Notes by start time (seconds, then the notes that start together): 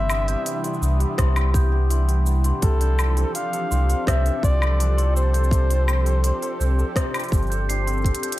Already playing: G1 C3 E3 G3 D4 E4 G4 E5
0.10 B3, low woodblock, shaker
0.28 G4 G6, open hi-hat, shaker
0.46 E4, open hi-hat, shaker
0.64 G4 C6, open hi-hat
0.74 shaker
0.82 C2 B3, shaker
1.00 G4, open hi-hat
1.18 C2 C3 C6, kick, cross-stick, open hi-hat, shaker
1.36 E4, open hi-hat, low woodblock, shaker
1.54 B3 G6, kick, shaker
1.72 G4
1.90 E4 C6, open hi-hat, shaker
2.08 G4, open hi-hat, shaker
2.26 B3, shaker
2.44 G4 C6, open hi-hat, shaker
2.62 C2 C3 F3 A4, kick, open hi-hat, shaker
2.80 D4 G6, open hi-hat, shaker
2.97 C4, low woodblock, shaker
3.08 G4
3.17 A4 C6, open hi-hat, shaker
3.35 D4 F5, open hi-hat, shaker
3.53 A4, open hi-hat, shaker
3.71 C2 C4 C6, shaker
3.89 A4, open hi-hat, shaker
3.98 A4
4.07 C2 C3 E5 G6, kick, cross-stick, open hi-hat, shaker
4.26 D4, open hi-hat, shaker
4.43 C2 C4 D5 C6, kick, shaker
4.61 A4, low woodblock, shaker
4.79 D4, open hi-hat, shaker
4.97 A4 C6, open hi-hat, shaker
5.15 C4 C5, shaker
5.33 A4 G6, open hi-hat
5.44 shaker
5.51 C3, kick, open hi-hat, shaker
5.69 D4 C6, open hi-hat, shaker
5.88 C4, low woodblock, shaker
6.06 A4, open hi-hat, shaker
6.24 D4 C6, open hi-hat, shaker
6.42 A4, open hi-hat, shaker
6.60 C2 C4 G6, shaker
6.79 A4, shaker
6.96 C3 C6, kick, cross-stick, open hi-hat, shaker
7.14 D4, open hi-hat, low woodblock, shaker
7.19 open hi-hat
7.24 open hi-hat
7.28 G1, kick, open hi-hat
7.33 C4, open hi-hat, shaker
7.37 open hi-hat
7.42 open hi-hat
7.47 G6, open hi-hat
7.52 A4, open hi-hat, shaker
7.69 D4 C7, open hi-hat, shaker
7.86 A4 C6, open hi-hat, shaker
7.93 shaker
7.97 shaker
8.02 C4, kick, closed hi-hat, shaker
8.15 closed hi-hat
8.23 A4 G6, closed hi-hat
8.32 closed hi-hat